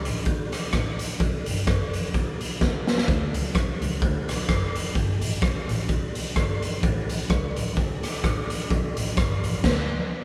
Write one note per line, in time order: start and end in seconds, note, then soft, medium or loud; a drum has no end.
0.05 0.24 A1 medium
0.05 closed hi-hat medium
0.25 0.66 C#2 medium
0.25 kick loud
0.25 closed hi-hat medium
0.52 cross-stick medium
0.52 closed hi-hat medium
0.73 1.20 A1 medium
0.73 kick loud
0.73 cross-stick loud
0.73 closed hi-hat medium
0.99 closed hi-hat medium
1.20 1.45 B1 loud
1.20 kick loud
1.20 closed hi-hat medium
1.46 1.64 G1 medium
1.46 closed hi-hat loud
1.67 2.14 F#1 loud
1.67 kick loud
1.67 cross-stick loud
1.67 closed hi-hat medium
1.93 closed hi-hat medium
2.14 2.54 B1 medium
2.14 kick loud
2.14 closed hi-hat medium
2.41 closed hi-hat medium
2.61 3.01 C#2 medium
2.61 kick loud
2.61 snare medium
2.87 snare medium
2.98 snare medium
3.08 3.30 D2 loud
3.08 kick loud
3.08 closed hi-hat medium
3.33 3.51 C#2 medium
3.33 closed hi-hat medium
3.55 3.81 B1 medium
3.55 kick loud
3.55 cross-stick loud
3.55 closed hi-hat medium
3.81 3.99 C#2 medium
3.81 closed hi-hat medium
4.02 4.28 D2 medium
4.02 kick loud
4.02 closed hi-hat medium
4.28 4.46 B1 loud
4.28 cross-stick medium
4.28 closed hi-hat medium
4.49 4.88 F#1 medium
4.49 kick loud
4.49 cross-stick loud
4.49 closed hi-hat medium
4.75 closed hi-hat medium
4.95 5.18 G1 loud
4.95 kick loud
4.95 closed hi-hat medium
5.21 5.41 A1 medium
5.21 closed hi-hat loud
5.42 5.64 B1 medium
5.42 kick loud
5.42 cross-stick loud
5.42 closed hi-hat medium
5.68 5.86 A1 loud
5.68 closed hi-hat medium
5.89 6.29 B1 loud
5.89 kick loud
5.89 closed hi-hat medium
6.15 closed hi-hat medium
6.36 6.82 G1 medium
6.36 kick loud
6.36 cross-stick loud
6.36 closed hi-hat medium
6.62 closed hi-hat medium
6.83 7.05 A1 loud
6.83 kick loud
6.83 closed hi-hat medium
7.08 7.26 B1 medium
7.08 closed hi-hat loud
7.30 7.52 C#2 loud
7.30 kick loud
7.30 cross-stick loud
7.30 closed hi-hat medium
7.55 7.73 A1 medium
7.55 closed hi-hat medium
7.76 8.17 C#2 medium
7.76 kick loud
7.76 closed hi-hat medium
8.03 cross-stick medium
8.03 closed hi-hat medium
8.24 8.70 A1 medium
8.24 kick loud
8.24 cross-stick loud
8.24 closed hi-hat medium
8.50 closed hi-hat medium
8.70 8.93 B1 loud
8.70 kick loud
8.70 closed hi-hat medium
8.96 9.14 A1 medium
8.96 closed hi-hat loud
9.17 9.39 G1 medium
9.17 kick loud
9.17 cross-stick loud
9.17 closed hi-hat medium
9.43 9.61 A1 medium
9.43 closed hi-hat medium
9.64 9.82 D2 loud
9.64 kick loud
9.64 snare loud
9.64 crash medium